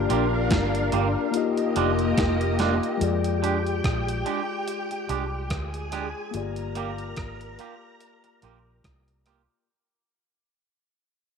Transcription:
Already playing: A#3 D4 F4 G4 A#4 D5 F5
0.09 A#1 A#3 F4 G4, closed hi-hat
0.51 G1, kick, snare, closed hi-hat
0.75 closed hi-hat
0.92 G1 A#3 F4 G4, closed hi-hat
1.31 A#3 D#4 F4 G4 D#5, closed hi-hat
1.36 G4 D#5
1.57 muted clean electric guitar stroke, closed hi-hat
1.76 F1 G3 D4 F4, closed hi-hat
1.99 closed hi-hat
2.18 F1, kick, snare, closed hi-hat
2.41 closed hi-hat
2.59 G3 D4 F4, snare, closed hi-hat
2.83 closed hi-hat
2.98 F2 G#3 F4, closed hi-hat
3.02 G4 G#4 D5 G5
3.24 closed hi-hat
3.42 G#3 D4 G4, closed hi-hat
3.67 closed hi-hat
3.84 A#1, kick, cross-stick, closed hi-hat
4.08 closed hi-hat
4.26 G#3 D4 G4, closed hi-hat
4.68 closed hi-hat
4.91 muted clean electric guitar stroke, closed hi-hat
5.09 C2 G#3 D4 G4, closed hi-hat
5.50 D2 G#4 G#5, kick, cross-stick, closed hi-hat
5.74 closed hi-hat
5.92 G#3 D4 G4, cross-stick, closed hi-hat
6.31 G1 A#3 F4 A#4 A#5, closed hi-hat
6.35 G4 D5
6.56 closed hi-hat
6.75 A#3 F4 G4, closed hi-hat
6.98 closed hi-hat
7.17 G#1, kick, cross-stick, closed hi-hat
7.41 closed hi-hat
7.59 A#3 F4 G4, closed hi-hat
8.01 closed hi-hat
8.24 muted clean electric guitar stroke, closed hi-hat
8.42 A#1 A#3 F4 G4, closed hi-hat
8.84 C2, kick, cross-stick, closed hi-hat
9.08 closed hi-hat
9.26 A#3 F4 G4, cross-stick, closed hi-hat

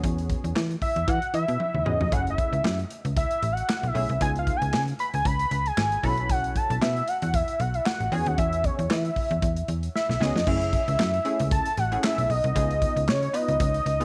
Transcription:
Already playing: B3 C#4 F#4 G#4
0.04 E2, kick, closed hi-hat
0.18 closed hi-hat
0.30 kick, closed hi-hat
0.44 E2, closed hi-hat
0.56 E3, snare, clap
0.70 closed hi-hat
0.82 E5, kick, open hi-hat
0.96 E2, closed hi-hat
1.08 E3 F#5, kick, closed hi-hat
1.22 closed hi-hat
1.34 E3 E5, closed hi-hat
1.48 B2, closed hi-hat
1.60 high tom
1.75 D#2, mid tom
1.85 E2 B3 C#4 F#4 G#4 D#5, mid tom
2.01 F2, floor tom
2.12 F#1 A3 C#4 E4 G#4 F#5, kick, closed hi-hat
2.27 E5, closed hi-hat
2.38 kick, closed hi-hat
2.53 C#2, closed hi-hat
2.64 F#2, snare, clap
2.79 closed hi-hat
2.90 closed hi-hat
3.05 C#2, closed hi-hat
3.17 E5, kick, closed hi-hat
3.31 closed hi-hat
3.43 A1, closed hi-hat
3.52 F#5
3.57 closed hi-hat
3.69 snare, clap
3.83 B1 E5, closed hi-hat
3.94 B1 A3 C#4 E4 G#4, open hi-hat
4.09 C2, closed hi-hat
4.21 C#2 B3 D#4 F4 G#4 G#5, kick, closed hi-hat
4.36 F5, closed hi-hat
4.47 kick, closed hi-hat
4.56 G#5
4.62 C#2, closed hi-hat
4.73 C#3, snare, clap
4.88 closed hi-hat
4.99 B5, closed hi-hat
5.14 C#2 G#5, closed hi-hat
5.25 C#2 B5, kick, closed hi-hat
5.39 closed hi-hat
5.51 C#2, closed hi-hat
5.66 G#5, closed hi-hat
5.77 G#1, snare, clap
5.92 closed hi-hat
6.03 B1 C#4 E4 F#4 A4 B5, kick, open hi-hat
6.17 closed hi-hat
6.29 F#5, kick, closed hi-hat
6.44 closed hi-hat
6.56 A5, kick, closed hi-hat
6.70 B1 A5, closed hi-hat
6.82 B2 E5, snare, clap
6.96 closed hi-hat
7.08 F#5, closed hi-hat
7.22 E2 F#5, closed hi-hat
7.34 E5, kick, closed hi-hat
7.48 closed hi-hat
7.60 B1 F#5, closed hi-hat
7.74 E5, closed hi-hat
7.86 F#5, snare, clap
8.00 A1, closed hi-hat
8.12 E2 B3 C#4 F#4 G#4 G#5, open hi-hat
8.26 D#2 F#5, closed hi-hat
8.38 E2 E5, kick, closed hi-hat
8.53 closed hi-hat
8.64 C#5, kick, closed hi-hat
8.79 E2, closed hi-hat
8.90 E3 E5, snare, clap
9.05 closed hi-hat
9.16 kick, open hi-hat
9.31 E2, closed hi-hat
9.42 E2, kick, closed hi-hat
9.57 closed hi-hat
9.68 E2, closed hi-hat
9.83 closed hi-hat
9.95 E5, snare
10.09 B1, snare
10.20 C#2 B3 C#4 F#4 G#4 D#5, snare
10.36 F2, snare
10.47 F#1 A3 C#4 E4 G#4 E5, kick, crash
10.61 closed hi-hat
10.73 kick, closed hi-hat
10.88 C#2, closed hi-hat
10.99 F#2, snare, clap
11.14 closed hi-hat
11.25 A3 C#4 E4 G#4, closed hi-hat
11.39 C#2, closed hi-hat
11.51 A5, kick, closed hi-hat
11.66 closed hi-hat
11.77 A1 F#5, closed hi-hat
11.92 A3 C#4 E4 G#4, closed hi-hat
12.04 E5, snare, clap
12.18 B1, closed hi-hat
12.30 B1 D#5, open hi-hat
12.44 C2, closed hi-hat
12.55 C#2 B3 D#4 F4 G#4, kick, closed hi-hat
12.71 closed hi-hat
12.82 kick, closed hi-hat
12.96 C#2, closed hi-hat
13.08 C#3 C#5, snare, clap
13.23 closed hi-hat
13.33 B3 D#4 F4 B4 D#5, closed hi-hat
13.48 C#2, closed hi-hat
13.60 C#2, kick, closed hi-hat
13.74 closed hi-hat
13.86 C#2, closed hi-hat
14.00 B3 D#4 F4 G#4, closed hi-hat

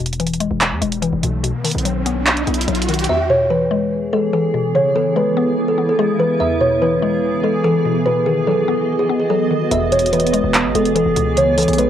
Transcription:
Already playing: E1 E2, riser
0.00 B2
0.06 closed hi-hat
0.13 closed hi-hat
0.20 E3, closed hi-hat
0.27 closed hi-hat
0.33 closed hi-hat
0.40 G#3, closed hi-hat
0.51 E1
0.61 clap, closed hi-hat
0.71 E2
0.81 E1 G#3, closed hi-hat
0.92 closed hi-hat
1.02 E3, closed hi-hat
1.13 E1
1.23 B1 B2, closed hi-hat
1.43 B2, closed hi-hat
1.64 D#3, closed hi-hat, open hi-hat
1.71 B1, closed hi-hat
1.78 closed hi-hat
1.85 F#3, closed hi-hat
2.06 B3, closed hi-hat
2.27 clap, closed hi-hat
2.37 closed hi-hat
2.47 B1 B3, closed hi-hat
2.54 closed hi-hat
2.61 closed hi-hat
2.68 B1 F#3, closed hi-hat
2.75 closed hi-hat
2.82 closed hi-hat
2.89 D#3, closed hi-hat
2.94 closed hi-hat
2.99 closed hi-hat
3.04 closed hi-hat
3.09 E2 E3 B3 G#4 E5
3.30 B2 C#5
3.50 E3 B4
3.71 G#3
4.13 G#3 A4
4.33 E3 A4
4.54 B2
4.75 C#3 E4 C#5
4.96 E3 A4
5.16 G#3 B4
5.37 B3
5.68 A4
5.78 B3
5.89 A4
5.99 G#3 G#4
6.19 E3 B4
6.40 E2 E3 G#4 E5
6.61 B2 C#5
6.82 E3 B4
7.02 G#3
7.43 G#3 A4
7.64 E3 A4
7.85 B2
8.06 B2 B3 F#4 B4 D#5
8.26 D#3 G#4
8.47 F#3 A4
8.68 B3
8.99 G#4
9.09 B3
9.20 G#4
9.30 F#3 A4
9.51 D#3
9.71 E1 E2 E3 G#4 E5, closed hi-hat
9.92 B2 C#5, closed hi-hat
9.99 closed hi-hat
10.06 closed hi-hat
10.13 E3 B4, closed hi-hat
10.20 closed hi-hat
10.27 closed hi-hat
10.33 G#3, closed hi-hat
10.44 E1
10.54 clap, closed hi-hat
10.64 G#1
10.75 E1 G#3 A4, closed hi-hat
10.85 closed hi-hat
10.95 E3 A4, closed hi-hat
11.06 E1
11.16 C#2 B2, closed hi-hat
11.37 C#3 E4 C#5, closed hi-hat
11.58 E3 A4, closed hi-hat, open hi-hat
11.63 closed hi-hat
11.68 B1, closed hi-hat
11.73 closed hi-hat
11.78 G#3 B4, closed hi-hat

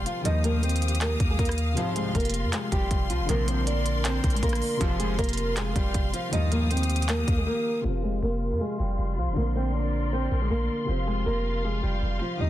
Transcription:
Already playing: C3 F3 C4 F4 F5 C6
0.06 F3 F4, closed hi-hat
0.21 A#1 D#2 G2 D#3 F3 G4 F5 D#6, closed hi-hat
0.25 G3 A#3 D#4 D#5
0.44 A#3 A#4, closed hi-hat
0.63 C4 C5, closed hi-hat
0.69 closed hi-hat
0.76 closed hi-hat
0.82 closed hi-hat
0.88 closed hi-hat
0.95 closed hi-hat
1.01 A#3 A#4, clap, closed hi-hat
1.20 D#2, kick, closed hi-hat
1.30 G#3 G#4
1.39 D#2 A#3 A#4, kick, closed hi-hat
1.45 cross-stick, closed hi-hat
1.52 closed hi-hat
1.58 closed hi-hat
1.73 C2 G#2 C3 F3 F4 C6, closed hi-hat
1.78 F3 C4
1.96 G#3 G#4, closed hi-hat
2.15 F1 A#3 A#4, kick, closed hi-hat
2.20 closed hi-hat
2.25 closed hi-hat
2.30 closed hi-hat
2.34 closed hi-hat
2.44 F2
2.53 G#3 G#4, clap, closed hi-hat
2.72 F1 G3 G4, kick, closed hi-hat
2.91 F1, kick, closed hi-hat
3.10 C2 F3 F4, closed hi-hat
3.20 F1
3.25 A#1 D2 C3 D3 F3 A#4 D5, closed hi-hat
3.29 A#3 C4 A#4
3.48 C4 C5, closed hi-hat
3.67 D4 D5, closed hi-hat
3.86 closed hi-hat
4.05 C4 C5, clap, closed hi-hat
4.24 A#1, kick, closed hi-hat
4.30 G#4, closed hi-hat
4.35 G#3, closed hi-hat
4.43 A#1 A#3 A#4, kick, closed hi-hat
4.49 cross-stick, closed hi-hat
4.55 closed hi-hat
4.62 open hi-hat
4.76 C3 F3 F4
4.81 F1 C2 G#2 F3 C4 F4 F5, kick, closed hi-hat
5.00 G#3 G#4, closed hi-hat
5.18 F1 A#3 A#4, kick, closed hi-hat
5.24 closed hi-hat
5.29 closed hi-hat
5.33 closed hi-hat
5.38 closed hi-hat
5.57 G#3 G#4, clap, closed hi-hat
5.75 F1 G3 G4, kick, closed hi-hat
5.94 F1, kick, closed hi-hat
6.14 F3 F4, closed hi-hat
6.29 A#1 D#2 G2 D#3 F3 G4 D#6, closed hi-hat
6.33 G3 A#3 D#4 D#5
6.52 A#3 A#4, closed hi-hat
6.70 C4 C5, closed hi-hat
6.77 closed hi-hat
6.83 closed hi-hat
6.90 closed hi-hat
6.96 closed hi-hat
7.02 closed hi-hat
7.09 A#3 A#4, clap, closed hi-hat
7.28 D#2, kick, closed hi-hat
7.38 G#3 G#4
7.47 A#3 A#4
7.81 F1 C3 F3 F4 F5 C6
7.86 F3 C4
8.03 G#3 G#4
8.23 F1 A#3 A#4
8.52 F2
8.61 G#3 G#4
8.80 F1 G3 G4
8.99 F1
9.17 C2 F3 F4
9.28 F1
9.33 A#1 D3 F3 A#4 D5
9.38 A#3 C4
9.56 C4 C5
9.74 D4 D5
10.13 C4 C5
10.31 A#1
10.42 G#3 G#4
10.50 A#1 A#3 A#4
10.84 C3 F3 F4
10.88 F1 F3 C4 F4 F5
11.07 G#3 G#4
11.26 F1 A#3 A#4
11.65 G#3 G#4
11.83 F1 G3 G4
12.02 F1
12.21 F3 F4
12.36 D#2 D#3 F3 G4 D#6
12.41 G3 A#3 D#4 D#5

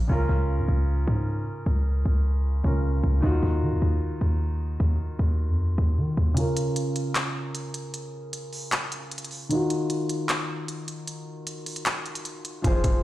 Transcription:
0.08 C#2 C#3 C#4 F4
0.12 A#4
0.29 C#2
0.59 G#2
0.68 C#2
1.08 G#2
1.66 C#2
2.06 C#2
2.64 C#2 C#3 C#4 F4 A#4
3.04 C#2
3.21 D#2 D#3 D#4 F4
3.26 F#4
3.43 D#2
3.62 D#3
3.72 D#2
3.82 D#2
4.21 D#2
4.80 D#2
5.19 D#2
5.49 F2
5.78 D#2
5.98 D#3
6.17 D#2
6.34 C#3 C#4 F4, closed hi-hat
6.39 A#4
6.57 closed hi-hat
6.76 closed hi-hat
6.96 closed hi-hat
7.15 clap, closed hi-hat
7.55 closed hi-hat
7.74 closed hi-hat
7.94 closed hi-hat
8.33 closed hi-hat
8.53 open hi-hat
8.72 clap, closed hi-hat
8.92 closed hi-hat
9.11 closed hi-hat
9.18 closed hi-hat
9.25 closed hi-hat
9.31 open hi-hat
9.49 D#3 D#4 F4, closed hi-hat
9.54 F#4
9.70 closed hi-hat
9.90 closed hi-hat
10.09 closed hi-hat
10.29 clap, closed hi-hat
10.68 closed hi-hat
10.88 closed hi-hat
11.07 closed hi-hat
11.47 closed hi-hat
11.66 closed hi-hat, open hi-hat
11.76 closed hi-hat
11.86 clap, closed hi-hat
12.06 closed hi-hat
12.15 closed hi-hat
12.25 closed hi-hat
12.45 closed hi-hat
12.62 F1 F3 F4 G#4, kick, closed hi-hat
12.67 C5
12.84 F1, kick, closed hi-hat

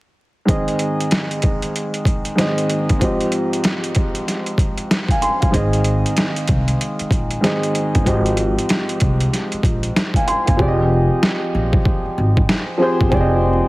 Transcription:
0.45 G#2 D#3 C4 G#4, kick, closed hi-hat
0.50 D#5
0.68 closed hi-hat
0.79 closed hi-hat
1.01 closed hi-hat
1.11 snare, closed hi-hat
1.31 closed hi-hat
1.42 kick, closed hi-hat
1.62 closed hi-hat
1.76 closed hi-hat
1.94 closed hi-hat
2.05 kick, closed hi-hat
2.25 closed hi-hat
2.35 G#2 D#3 C4 G#4, snare, closed hi-hat
2.40 D#5
2.58 closed hi-hat
2.70 closed hi-hat
2.89 kick, closed hi-hat
2.99 G#2 F3 C4 G4, kick, closed hi-hat
3.04 D#5
3.21 closed hi-hat
3.32 closed hi-hat
3.53 closed hi-hat
3.64 snare, closed hi-hat
3.84 closed hi-hat
3.95 kick, closed hi-hat
4.15 closed hi-hat
4.28 snare, closed hi-hat
4.46 closed hi-hat
4.58 kick, closed hi-hat
4.78 closed hi-hat
4.91 snare, closed hi-hat
5.09 F5 G#5, kick, closed hi-hat
5.22 G#5 C6, closed hi-hat
5.41 F5 G#5, kick, closed hi-hat
5.50 G#1 G#2 D#3 C4 G#4, kick, closed hi-hat
5.55 D#5
5.73 closed hi-hat
5.84 closed hi-hat
6.06 closed hi-hat
6.17 snare, closed hi-hat
6.36 closed hi-hat
6.48 C2, kick, closed hi-hat
6.68 closed hi-hat
6.81 closed hi-hat
6.99 muted upright bass stroke, closed hi-hat
7.11 A#1, kick, closed hi-hat
7.31 closed hi-hat
7.41 G#2 D#3 C4 G#4, snare, closed hi-hat
7.46 D#5
7.63 closed hi-hat
7.75 closed hi-hat
7.95 G1, kick, closed hi-hat
8.04 G#1 G#2 F3 C4 G4, kick, closed hi-hat
8.09 D#5
8.26 closed hi-hat
8.37 closed hi-hat
8.59 closed hi-hat
8.69 snare, closed hi-hat
8.89 closed hi-hat
9.00 C2, kick, closed hi-hat
9.20 closed hi-hat
9.33 snare, closed hi-hat
9.52 muted upright bass stroke, closed hi-hat
9.63 A#1, kick, closed hi-hat
9.83 closed hi-hat
9.96 snare, closed hi-hat
10.14 F5 G#5, kick, closed hi-hat
10.28 G#5 C6, closed hi-hat
10.46 G1 F5 G#5, kick, closed hi-hat
10.57 F1 F3 C4 G4 G#4, kick
10.62 D5
10.68 D#5
11.23 snare
11.55 A#1
11.73 kick
11.85 kick
12.06 muted upright bass stroke
12.18 G#1
12.37 kick
12.49 snare
12.78 F3 C4 G4 G#4
12.82 C5
13.01 G1, kick
13.09 F1 F3 C4 G4 G#4, kick
13.14 D5
13.20 D#5

